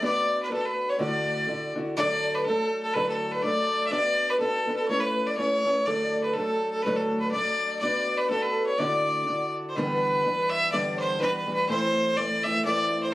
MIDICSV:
0, 0, Header, 1, 4, 480
1, 0, Start_track
1, 0, Key_signature, 2, "major"
1, 0, Tempo, 485437
1, 25, Time_signature, 2, 2, 24, 8
1, 9640, Key_signature, 1, "major"
1, 12993, End_track
2, 0, Start_track
2, 0, Title_t, "Fiddle"
2, 0, Program_c, 0, 110
2, 41, Note_on_c, 0, 74, 103
2, 381, Note_off_c, 0, 74, 0
2, 419, Note_on_c, 0, 71, 81
2, 510, Note_off_c, 0, 71, 0
2, 526, Note_on_c, 0, 69, 76
2, 646, Note_on_c, 0, 71, 76
2, 661, Note_off_c, 0, 69, 0
2, 889, Note_on_c, 0, 73, 73
2, 903, Note_off_c, 0, 71, 0
2, 989, Note_off_c, 0, 73, 0
2, 995, Note_on_c, 0, 74, 89
2, 1699, Note_off_c, 0, 74, 0
2, 1947, Note_on_c, 0, 74, 120
2, 2324, Note_on_c, 0, 71, 80
2, 2339, Note_off_c, 0, 74, 0
2, 2421, Note_off_c, 0, 71, 0
2, 2427, Note_on_c, 0, 69, 99
2, 2778, Note_off_c, 0, 69, 0
2, 2801, Note_on_c, 0, 69, 89
2, 2909, Note_on_c, 0, 71, 112
2, 2924, Note_off_c, 0, 69, 0
2, 3045, Note_off_c, 0, 71, 0
2, 3051, Note_on_c, 0, 69, 80
2, 3281, Note_on_c, 0, 71, 85
2, 3296, Note_off_c, 0, 69, 0
2, 3389, Note_on_c, 0, 74, 106
2, 3404, Note_off_c, 0, 71, 0
2, 3814, Note_off_c, 0, 74, 0
2, 3824, Note_on_c, 0, 76, 65
2, 3872, Note_on_c, 0, 74, 122
2, 3887, Note_off_c, 0, 76, 0
2, 4255, Note_on_c, 0, 71, 79
2, 4269, Note_off_c, 0, 74, 0
2, 4339, Note_off_c, 0, 71, 0
2, 4345, Note_on_c, 0, 69, 99
2, 4699, Note_off_c, 0, 69, 0
2, 4711, Note_on_c, 0, 69, 72
2, 4818, Note_off_c, 0, 69, 0
2, 4824, Note_on_c, 0, 73, 117
2, 4946, Note_on_c, 0, 71, 98
2, 4961, Note_off_c, 0, 73, 0
2, 5208, Note_on_c, 0, 74, 86
2, 5223, Note_off_c, 0, 71, 0
2, 5305, Note_off_c, 0, 74, 0
2, 5311, Note_on_c, 0, 73, 110
2, 5792, Note_on_c, 0, 74, 106
2, 5807, Note_off_c, 0, 73, 0
2, 6158, Note_off_c, 0, 74, 0
2, 6164, Note_on_c, 0, 71, 73
2, 6266, Note_on_c, 0, 69, 87
2, 6281, Note_off_c, 0, 71, 0
2, 6627, Note_off_c, 0, 69, 0
2, 6633, Note_on_c, 0, 69, 76
2, 6747, Note_on_c, 0, 71, 89
2, 6762, Note_off_c, 0, 69, 0
2, 6887, Note_on_c, 0, 69, 74
2, 6902, Note_off_c, 0, 71, 0
2, 7114, Note_off_c, 0, 69, 0
2, 7120, Note_on_c, 0, 71, 75
2, 7222, Note_off_c, 0, 71, 0
2, 7228, Note_on_c, 0, 74, 118
2, 7681, Note_off_c, 0, 74, 0
2, 7706, Note_on_c, 0, 74, 100
2, 8085, Note_on_c, 0, 71, 83
2, 8100, Note_off_c, 0, 74, 0
2, 8198, Note_off_c, 0, 71, 0
2, 8207, Note_on_c, 0, 69, 78
2, 8326, Note_on_c, 0, 71, 81
2, 8341, Note_off_c, 0, 69, 0
2, 8561, Note_off_c, 0, 71, 0
2, 8567, Note_on_c, 0, 73, 87
2, 8676, Note_on_c, 0, 74, 98
2, 8691, Note_off_c, 0, 73, 0
2, 9421, Note_off_c, 0, 74, 0
2, 9583, Note_on_c, 0, 72, 64
2, 9649, Note_on_c, 0, 71, 106
2, 9664, Note_off_c, 0, 72, 0
2, 10380, Note_on_c, 0, 76, 125
2, 10395, Note_off_c, 0, 71, 0
2, 10592, Note_off_c, 0, 76, 0
2, 10598, Note_on_c, 0, 74, 94
2, 10842, Note_off_c, 0, 74, 0
2, 10870, Note_on_c, 0, 72, 99
2, 11066, Note_off_c, 0, 72, 0
2, 11088, Note_on_c, 0, 71, 92
2, 11231, Note_off_c, 0, 71, 0
2, 11240, Note_on_c, 0, 71, 78
2, 11397, Note_off_c, 0, 71, 0
2, 11402, Note_on_c, 0, 71, 104
2, 11547, Note_off_c, 0, 71, 0
2, 11565, Note_on_c, 0, 72, 119
2, 12035, Note_on_c, 0, 74, 106
2, 12050, Note_off_c, 0, 72, 0
2, 12296, Note_on_c, 0, 76, 110
2, 12311, Note_off_c, 0, 74, 0
2, 12499, Note_off_c, 0, 76, 0
2, 12505, Note_on_c, 0, 74, 106
2, 12852, Note_off_c, 0, 74, 0
2, 12884, Note_on_c, 0, 72, 75
2, 12993, Note_off_c, 0, 72, 0
2, 12993, End_track
3, 0, Start_track
3, 0, Title_t, "Shakuhachi"
3, 0, Program_c, 1, 77
3, 5, Note_on_c, 1, 74, 98
3, 496, Note_on_c, 1, 69, 70
3, 511, Note_off_c, 1, 74, 0
3, 634, Note_off_c, 1, 69, 0
3, 882, Note_on_c, 1, 73, 95
3, 982, Note_off_c, 1, 73, 0
3, 988, Note_on_c, 1, 74, 93
3, 1696, Note_off_c, 1, 74, 0
3, 1953, Note_on_c, 1, 76, 87
3, 1992, Note_on_c, 1, 74, 94
3, 2002, Note_off_c, 1, 76, 0
3, 2300, Note_off_c, 1, 74, 0
3, 2336, Note_on_c, 1, 71, 84
3, 2420, Note_off_c, 1, 71, 0
3, 2426, Note_on_c, 1, 69, 86
3, 2777, Note_off_c, 1, 69, 0
3, 2801, Note_on_c, 1, 69, 86
3, 2913, Note_on_c, 1, 71, 93
3, 2927, Note_off_c, 1, 69, 0
3, 3042, Note_off_c, 1, 71, 0
3, 3048, Note_on_c, 1, 69, 75
3, 3272, Note_off_c, 1, 69, 0
3, 3296, Note_on_c, 1, 71, 83
3, 3390, Note_off_c, 1, 71, 0
3, 3396, Note_on_c, 1, 74, 81
3, 3844, Note_off_c, 1, 74, 0
3, 3863, Note_on_c, 1, 76, 87
3, 3901, Note_on_c, 1, 74, 94
3, 3911, Note_off_c, 1, 76, 0
3, 4217, Note_off_c, 1, 74, 0
3, 4243, Note_on_c, 1, 71, 85
3, 4334, Note_off_c, 1, 71, 0
3, 4340, Note_on_c, 1, 69, 80
3, 4435, Note_off_c, 1, 69, 0
3, 4441, Note_on_c, 1, 69, 56
3, 4549, Note_off_c, 1, 69, 0
3, 4559, Note_on_c, 1, 69, 75
3, 4721, Note_off_c, 1, 69, 0
3, 4733, Note_on_c, 1, 69, 82
3, 4834, Note_off_c, 1, 69, 0
3, 4856, Note_on_c, 1, 73, 82
3, 4997, Note_on_c, 1, 71, 82
3, 5012, Note_off_c, 1, 73, 0
3, 5219, Note_off_c, 1, 71, 0
3, 5225, Note_on_c, 1, 74, 73
3, 5320, Note_off_c, 1, 74, 0
3, 5329, Note_on_c, 1, 74, 73
3, 5364, Note_on_c, 1, 73, 79
3, 5374, Note_off_c, 1, 74, 0
3, 5822, Note_on_c, 1, 74, 88
3, 5837, Note_off_c, 1, 73, 0
3, 6166, Note_on_c, 1, 71, 78
3, 6181, Note_off_c, 1, 74, 0
3, 6266, Note_off_c, 1, 71, 0
3, 6272, Note_on_c, 1, 69, 75
3, 6623, Note_off_c, 1, 69, 0
3, 6657, Note_on_c, 1, 69, 81
3, 6757, Note_off_c, 1, 69, 0
3, 6765, Note_on_c, 1, 71, 86
3, 6887, Note_off_c, 1, 71, 0
3, 6892, Note_on_c, 1, 71, 68
3, 6929, Note_on_c, 1, 69, 74
3, 6939, Note_off_c, 1, 71, 0
3, 7116, Note_off_c, 1, 69, 0
3, 7144, Note_on_c, 1, 71, 75
3, 7232, Note_off_c, 1, 71, 0
3, 7238, Note_on_c, 1, 74, 80
3, 7686, Note_off_c, 1, 74, 0
3, 7721, Note_on_c, 1, 74, 89
3, 8067, Note_off_c, 1, 74, 0
3, 8091, Note_on_c, 1, 71, 81
3, 8193, Note_off_c, 1, 71, 0
3, 8216, Note_on_c, 1, 69, 70
3, 8292, Note_off_c, 1, 69, 0
3, 8298, Note_on_c, 1, 69, 62
3, 8388, Note_off_c, 1, 69, 0
3, 8394, Note_on_c, 1, 69, 75
3, 8558, Note_off_c, 1, 69, 0
3, 8669, Note_on_c, 1, 74, 67
3, 9378, Note_off_c, 1, 74, 0
3, 9629, Note_on_c, 1, 70, 72
3, 9747, Note_off_c, 1, 70, 0
3, 9747, Note_on_c, 1, 71, 72
3, 10337, Note_off_c, 1, 71, 0
3, 10382, Note_on_c, 1, 76, 94
3, 10583, Note_off_c, 1, 76, 0
3, 10606, Note_on_c, 1, 76, 75
3, 10646, Note_on_c, 1, 74, 82
3, 10656, Note_off_c, 1, 76, 0
3, 10848, Note_on_c, 1, 72, 70
3, 10863, Note_off_c, 1, 74, 0
3, 11053, Note_off_c, 1, 72, 0
3, 11059, Note_on_c, 1, 71, 76
3, 11215, Note_off_c, 1, 71, 0
3, 11398, Note_on_c, 1, 71, 74
3, 11553, Note_on_c, 1, 72, 86
3, 11568, Note_off_c, 1, 71, 0
3, 12034, Note_on_c, 1, 74, 84
3, 12049, Note_off_c, 1, 72, 0
3, 12306, Note_on_c, 1, 76, 95
3, 12320, Note_off_c, 1, 74, 0
3, 12515, Note_off_c, 1, 76, 0
3, 12515, Note_on_c, 1, 76, 78
3, 12557, Note_on_c, 1, 74, 85
3, 12567, Note_off_c, 1, 76, 0
3, 12883, Note_off_c, 1, 74, 0
3, 12892, Note_on_c, 1, 72, 78
3, 12972, Note_off_c, 1, 72, 0
3, 12993, End_track
4, 0, Start_track
4, 0, Title_t, "Steel-string acoustic guitar"
4, 0, Program_c, 2, 25
4, 21, Note_on_c, 2, 59, 96
4, 26, Note_on_c, 2, 62, 88
4, 30, Note_on_c, 2, 66, 95
4, 38, Note_on_c, 2, 71, 104
4, 493, Note_off_c, 2, 59, 0
4, 505, Note_on_c, 2, 59, 59
4, 506, Note_off_c, 2, 62, 0
4, 510, Note_on_c, 2, 62, 54
4, 511, Note_off_c, 2, 71, 0
4, 515, Note_off_c, 2, 66, 0
4, 519, Note_on_c, 2, 66, 66
4, 522, Note_on_c, 2, 71, 68
4, 976, Note_on_c, 2, 38, 87
4, 977, Note_off_c, 2, 59, 0
4, 980, Note_on_c, 2, 45, 89
4, 981, Note_on_c, 2, 50, 84
4, 983, Note_off_c, 2, 62, 0
4, 987, Note_on_c, 2, 62, 93
4, 989, Note_off_c, 2, 66, 0
4, 993, Note_off_c, 2, 71, 0
4, 993, Note_on_c, 2, 64, 93
4, 997, Note_on_c, 2, 66, 88
4, 1460, Note_off_c, 2, 50, 0
4, 1464, Note_off_c, 2, 38, 0
4, 1464, Note_on_c, 2, 50, 71
4, 1466, Note_off_c, 2, 45, 0
4, 1466, Note_off_c, 2, 62, 0
4, 1468, Note_off_c, 2, 64, 0
4, 1470, Note_on_c, 2, 62, 66
4, 1480, Note_on_c, 2, 64, 57
4, 1485, Note_off_c, 2, 66, 0
4, 1489, Note_on_c, 2, 66, 63
4, 1717, Note_off_c, 2, 50, 0
4, 1725, Note_off_c, 2, 62, 0
4, 1729, Note_on_c, 2, 50, 61
4, 1733, Note_off_c, 2, 64, 0
4, 1737, Note_on_c, 2, 62, 68
4, 1744, Note_on_c, 2, 64, 62
4, 1745, Note_off_c, 2, 66, 0
4, 1758, Note_on_c, 2, 66, 77
4, 1946, Note_on_c, 2, 38, 89
4, 1949, Note_off_c, 2, 62, 0
4, 1950, Note_off_c, 2, 50, 0
4, 1954, Note_on_c, 2, 45, 71
4, 1957, Note_off_c, 2, 64, 0
4, 1960, Note_on_c, 2, 54, 79
4, 1961, Note_on_c, 2, 62, 87
4, 1964, Note_off_c, 2, 66, 0
4, 1970, Note_on_c, 2, 57, 90
4, 1971, Note_on_c, 2, 69, 89
4, 2431, Note_off_c, 2, 38, 0
4, 2435, Note_off_c, 2, 45, 0
4, 2435, Note_off_c, 2, 54, 0
4, 2439, Note_on_c, 2, 54, 62
4, 2443, Note_off_c, 2, 57, 0
4, 2444, Note_off_c, 2, 62, 0
4, 2444, Note_off_c, 2, 69, 0
4, 2448, Note_on_c, 2, 62, 64
4, 2457, Note_on_c, 2, 57, 67
4, 2463, Note_on_c, 2, 69, 69
4, 2914, Note_on_c, 2, 38, 74
4, 2916, Note_off_c, 2, 54, 0
4, 2917, Note_off_c, 2, 69, 0
4, 2918, Note_off_c, 2, 57, 0
4, 2919, Note_on_c, 2, 45, 90
4, 2920, Note_on_c, 2, 54, 86
4, 2926, Note_off_c, 2, 62, 0
4, 2929, Note_on_c, 2, 69, 82
4, 2930, Note_on_c, 2, 57, 85
4, 2930, Note_on_c, 2, 62, 91
4, 3382, Note_off_c, 2, 54, 0
4, 3388, Note_off_c, 2, 62, 0
4, 3394, Note_on_c, 2, 54, 59
4, 3396, Note_off_c, 2, 57, 0
4, 3397, Note_off_c, 2, 38, 0
4, 3399, Note_off_c, 2, 45, 0
4, 3399, Note_on_c, 2, 62, 69
4, 3404, Note_off_c, 2, 69, 0
4, 3408, Note_on_c, 2, 57, 68
4, 3423, Note_on_c, 2, 69, 69
4, 3862, Note_off_c, 2, 54, 0
4, 3865, Note_off_c, 2, 62, 0
4, 3866, Note_on_c, 2, 59, 83
4, 3875, Note_off_c, 2, 57, 0
4, 3876, Note_on_c, 2, 62, 86
4, 3879, Note_on_c, 2, 66, 79
4, 3880, Note_off_c, 2, 69, 0
4, 3884, Note_on_c, 2, 71, 90
4, 4339, Note_off_c, 2, 59, 0
4, 4346, Note_off_c, 2, 62, 0
4, 4350, Note_on_c, 2, 59, 63
4, 4352, Note_off_c, 2, 66, 0
4, 4358, Note_on_c, 2, 62, 67
4, 4360, Note_off_c, 2, 71, 0
4, 4364, Note_on_c, 2, 66, 61
4, 4372, Note_on_c, 2, 71, 71
4, 4607, Note_off_c, 2, 59, 0
4, 4619, Note_off_c, 2, 62, 0
4, 4619, Note_on_c, 2, 59, 61
4, 4627, Note_off_c, 2, 66, 0
4, 4630, Note_off_c, 2, 71, 0
4, 4631, Note_on_c, 2, 62, 57
4, 4639, Note_on_c, 2, 66, 72
4, 4649, Note_on_c, 2, 71, 73
4, 4832, Note_off_c, 2, 59, 0
4, 4836, Note_on_c, 2, 57, 82
4, 4839, Note_off_c, 2, 71, 0
4, 4843, Note_off_c, 2, 62, 0
4, 4845, Note_off_c, 2, 66, 0
4, 4847, Note_on_c, 2, 61, 80
4, 4849, Note_on_c, 2, 64, 85
4, 4851, Note_on_c, 2, 71, 91
4, 5309, Note_off_c, 2, 57, 0
4, 5311, Note_off_c, 2, 61, 0
4, 5313, Note_on_c, 2, 57, 53
4, 5320, Note_off_c, 2, 64, 0
4, 5323, Note_on_c, 2, 61, 66
4, 5327, Note_off_c, 2, 71, 0
4, 5332, Note_on_c, 2, 64, 63
4, 5344, Note_on_c, 2, 71, 65
4, 5568, Note_off_c, 2, 57, 0
4, 5579, Note_on_c, 2, 57, 59
4, 5581, Note_off_c, 2, 61, 0
4, 5587, Note_off_c, 2, 64, 0
4, 5593, Note_on_c, 2, 61, 63
4, 5597, Note_off_c, 2, 71, 0
4, 5599, Note_on_c, 2, 64, 62
4, 5610, Note_on_c, 2, 71, 75
4, 5792, Note_on_c, 2, 38, 84
4, 5799, Note_off_c, 2, 57, 0
4, 5803, Note_off_c, 2, 61, 0
4, 5804, Note_on_c, 2, 45, 78
4, 5805, Note_on_c, 2, 54, 86
4, 5807, Note_off_c, 2, 71, 0
4, 5807, Note_on_c, 2, 62, 87
4, 5808, Note_off_c, 2, 64, 0
4, 5811, Note_on_c, 2, 57, 95
4, 5811, Note_on_c, 2, 69, 94
4, 6274, Note_off_c, 2, 54, 0
4, 6278, Note_off_c, 2, 38, 0
4, 6278, Note_on_c, 2, 54, 65
4, 6283, Note_off_c, 2, 45, 0
4, 6287, Note_off_c, 2, 57, 0
4, 6287, Note_off_c, 2, 69, 0
4, 6289, Note_off_c, 2, 62, 0
4, 6293, Note_on_c, 2, 62, 68
4, 6301, Note_on_c, 2, 57, 64
4, 6313, Note_on_c, 2, 69, 78
4, 6770, Note_on_c, 2, 38, 81
4, 6772, Note_off_c, 2, 57, 0
4, 6778, Note_off_c, 2, 54, 0
4, 6778, Note_off_c, 2, 69, 0
4, 6780, Note_on_c, 2, 45, 93
4, 6782, Note_on_c, 2, 54, 98
4, 6783, Note_off_c, 2, 62, 0
4, 6787, Note_on_c, 2, 62, 92
4, 6791, Note_on_c, 2, 69, 82
4, 6794, Note_on_c, 2, 57, 73
4, 7246, Note_off_c, 2, 54, 0
4, 7247, Note_off_c, 2, 38, 0
4, 7250, Note_on_c, 2, 54, 61
4, 7251, Note_off_c, 2, 45, 0
4, 7253, Note_off_c, 2, 57, 0
4, 7257, Note_off_c, 2, 62, 0
4, 7257, Note_off_c, 2, 69, 0
4, 7261, Note_on_c, 2, 62, 66
4, 7264, Note_on_c, 2, 57, 64
4, 7278, Note_on_c, 2, 69, 72
4, 7731, Note_off_c, 2, 54, 0
4, 7733, Note_off_c, 2, 57, 0
4, 7735, Note_on_c, 2, 59, 76
4, 7740, Note_off_c, 2, 62, 0
4, 7740, Note_off_c, 2, 69, 0
4, 7743, Note_on_c, 2, 62, 96
4, 7745, Note_on_c, 2, 66, 91
4, 7750, Note_on_c, 2, 71, 88
4, 8197, Note_off_c, 2, 59, 0
4, 8208, Note_on_c, 2, 59, 60
4, 8210, Note_off_c, 2, 62, 0
4, 8211, Note_off_c, 2, 66, 0
4, 8214, Note_on_c, 2, 62, 63
4, 8216, Note_off_c, 2, 71, 0
4, 8223, Note_on_c, 2, 66, 68
4, 8227, Note_on_c, 2, 71, 71
4, 8685, Note_off_c, 2, 59, 0
4, 8686, Note_on_c, 2, 38, 81
4, 8692, Note_off_c, 2, 66, 0
4, 8694, Note_off_c, 2, 71, 0
4, 8694, Note_on_c, 2, 45, 86
4, 8697, Note_off_c, 2, 62, 0
4, 8698, Note_on_c, 2, 50, 93
4, 8701, Note_on_c, 2, 62, 99
4, 8702, Note_on_c, 2, 64, 84
4, 8709, Note_on_c, 2, 66, 94
4, 9157, Note_off_c, 2, 50, 0
4, 9161, Note_on_c, 2, 50, 59
4, 9162, Note_off_c, 2, 62, 0
4, 9163, Note_off_c, 2, 38, 0
4, 9166, Note_on_c, 2, 62, 67
4, 9167, Note_off_c, 2, 45, 0
4, 9173, Note_off_c, 2, 64, 0
4, 9175, Note_off_c, 2, 66, 0
4, 9177, Note_on_c, 2, 64, 59
4, 9185, Note_on_c, 2, 66, 70
4, 9649, Note_on_c, 2, 43, 91
4, 9652, Note_off_c, 2, 66, 0
4, 9656, Note_off_c, 2, 50, 0
4, 9656, Note_on_c, 2, 50, 79
4, 9658, Note_off_c, 2, 62, 0
4, 9661, Note_on_c, 2, 52, 88
4, 9662, Note_on_c, 2, 55, 90
4, 9663, Note_off_c, 2, 64, 0
4, 9667, Note_on_c, 2, 59, 96
4, 9670, Note_on_c, 2, 62, 97
4, 10118, Note_off_c, 2, 52, 0
4, 10122, Note_on_c, 2, 52, 58
4, 10123, Note_off_c, 2, 43, 0
4, 10123, Note_off_c, 2, 55, 0
4, 10127, Note_off_c, 2, 50, 0
4, 10132, Note_off_c, 2, 59, 0
4, 10133, Note_off_c, 2, 62, 0
4, 10134, Note_on_c, 2, 55, 56
4, 10145, Note_on_c, 2, 59, 67
4, 10150, Note_on_c, 2, 62, 62
4, 10601, Note_off_c, 2, 55, 0
4, 10602, Note_off_c, 2, 59, 0
4, 10602, Note_on_c, 2, 43, 90
4, 10603, Note_off_c, 2, 52, 0
4, 10606, Note_off_c, 2, 62, 0
4, 10607, Note_on_c, 2, 52, 76
4, 10609, Note_on_c, 2, 50, 80
4, 10613, Note_on_c, 2, 55, 88
4, 10613, Note_on_c, 2, 59, 88
4, 10618, Note_on_c, 2, 62, 93
4, 11065, Note_off_c, 2, 55, 0
4, 11066, Note_off_c, 2, 52, 0
4, 11070, Note_on_c, 2, 52, 60
4, 11074, Note_off_c, 2, 59, 0
4, 11077, Note_on_c, 2, 55, 73
4, 11078, Note_off_c, 2, 43, 0
4, 11080, Note_off_c, 2, 62, 0
4, 11082, Note_off_c, 2, 50, 0
4, 11086, Note_on_c, 2, 59, 59
4, 11092, Note_on_c, 2, 62, 68
4, 11325, Note_off_c, 2, 52, 0
4, 11332, Note_off_c, 2, 55, 0
4, 11337, Note_on_c, 2, 52, 62
4, 11343, Note_on_c, 2, 55, 67
4, 11344, Note_off_c, 2, 59, 0
4, 11347, Note_off_c, 2, 62, 0
4, 11354, Note_on_c, 2, 59, 69
4, 11364, Note_on_c, 2, 62, 60
4, 11546, Note_off_c, 2, 52, 0
4, 11556, Note_on_c, 2, 45, 80
4, 11557, Note_off_c, 2, 55, 0
4, 11558, Note_on_c, 2, 52, 94
4, 11562, Note_off_c, 2, 59, 0
4, 11565, Note_on_c, 2, 60, 85
4, 11567, Note_off_c, 2, 62, 0
4, 11568, Note_on_c, 2, 57, 96
4, 11575, Note_on_c, 2, 64, 91
4, 12032, Note_off_c, 2, 52, 0
4, 12033, Note_off_c, 2, 45, 0
4, 12035, Note_on_c, 2, 52, 72
4, 12038, Note_off_c, 2, 60, 0
4, 12040, Note_off_c, 2, 57, 0
4, 12049, Note_on_c, 2, 60, 59
4, 12053, Note_on_c, 2, 57, 72
4, 12059, Note_off_c, 2, 64, 0
4, 12063, Note_on_c, 2, 64, 74
4, 12294, Note_off_c, 2, 52, 0
4, 12301, Note_off_c, 2, 60, 0
4, 12305, Note_off_c, 2, 57, 0
4, 12306, Note_on_c, 2, 52, 56
4, 12311, Note_off_c, 2, 64, 0
4, 12313, Note_on_c, 2, 60, 68
4, 12325, Note_on_c, 2, 57, 68
4, 12329, Note_on_c, 2, 64, 73
4, 12501, Note_off_c, 2, 52, 0
4, 12508, Note_off_c, 2, 60, 0
4, 12511, Note_on_c, 2, 45, 86
4, 12513, Note_on_c, 2, 52, 88
4, 12515, Note_off_c, 2, 57, 0
4, 12519, Note_off_c, 2, 64, 0
4, 12520, Note_on_c, 2, 60, 86
4, 12527, Note_on_c, 2, 57, 102
4, 12530, Note_on_c, 2, 64, 85
4, 12985, Note_off_c, 2, 52, 0
4, 12985, Note_off_c, 2, 60, 0
4, 12989, Note_off_c, 2, 45, 0
4, 12993, Note_off_c, 2, 57, 0
4, 12993, Note_off_c, 2, 64, 0
4, 12993, End_track
0, 0, End_of_file